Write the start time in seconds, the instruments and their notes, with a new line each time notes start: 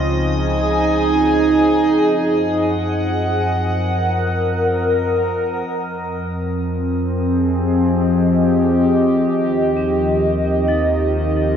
Already playing: sub bass C#2, ambient pad C#3 D#4, synth drone F3 C4, synth texture D#5 D#6
0.03 ambient pad G#4 G#5
2.04 sub bass F#2
2.31 ambient pad F#5
3.69 ambient pad A#4
5.68 sub bass F2, synth drone F3 C4, ambient pad F3
6.04 ambient pad C4
7.16 ambient pad G#4
7.29 ambient pad G4 D#5
9.28 sub bass D#2, ambient pad D#3
9.77 vibraphone C4
10.68 vibraphone F3 D#4
10.96 ambient pad F4